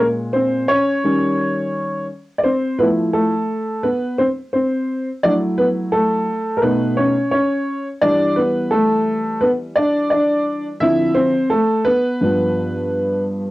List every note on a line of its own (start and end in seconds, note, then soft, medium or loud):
0.00 0.66 A#2 medium
0.00 0.66 G#3 soft
0.00 0.09 A#3 medium
0.33 0.68 C4 medium
0.33 0.70 C5 medium
0.68 1.04 C#4 medium
0.68 2.05 C#5 loud
1.04 2.05 D#3 medium
1.04 2.06 G3 soft
1.04 2.06 C#4 medium
2.38 2.44 D5 medium
2.44 2.77 C4 medium
2.44 2.77 C5 medium
2.79 3.30 F3 medium
2.79 3.13 A3 medium
2.79 2.88 B3 medium
2.79 3.30 E4 medium
2.79 2.87 B4 medium
3.13 3.80 A3 medium
3.13 3.86 A4 medium
3.83 4.17 B3 medium
3.83 4.20 B4 medium
4.18 4.28 C4 medium
4.18 4.26 C5 medium
4.53 5.08 C4 medium
4.53 5.07 C5 medium
5.23 6.24 F#3 medium
5.23 5.92 A3 soft
5.23 5.33 D4 medium
5.23 6.25 E4 medium
5.23 5.31 D5 loud
5.58 5.67 B3 medium
5.58 5.66 B4 medium
5.92 6.55 A3 medium
5.92 6.60 A4 medium
6.57 6.63 A#4 medium
6.62 7.13 B2 medium
6.62 7.14 A3 medium
6.62 6.96 B3 medium
6.62 7.14 D#4 medium
6.62 6.99 B4 medium
6.97 7.31 C#4 medium
6.97 7.30 C#5 medium
7.32 7.87 C#4 medium
7.32 7.86 C#5 medium
8.02 10.77 E3 medium
8.02 10.78 G3 soft
8.02 8.36 D4 medium
8.02 8.38 D5 loud
8.36 8.70 B3 medium
8.36 8.73 B4 medium
8.71 9.38 A3 medium
8.71 9.44 A4 medium
9.40 9.51 B3 medium
9.40 9.49 B4 medium
9.75 10.10 D4 medium
9.75 10.09 D5 medium
10.10 10.66 D4 medium
10.10 10.65 D5 medium
10.80 11.32 D3 medium
10.80 11.32 F3 soft
10.80 11.15 C4 medium
10.80 11.15 E4 medium
10.80 11.17 E5 loud
11.14 11.49 C4 medium
11.14 11.48 C5 medium
11.50 11.84 A3 medium
11.50 11.87 A4 medium
11.85 12.21 B3 medium
11.85 13.21 B4 loud
12.21 13.51 G2 medium
12.21 13.51 F3 medium
12.21 13.51 B3 medium